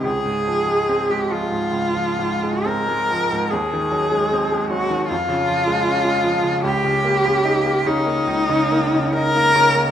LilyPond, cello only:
\new Staff \with { instrumentName = "Cello" } { \time 4/4 \key des \lydian \tempo 4 = 74 aes'4~ aes'16 g'16 f'4. bes'4 | aes'4. ges'8 f'2 | g'4. ees'4. bes'4 | }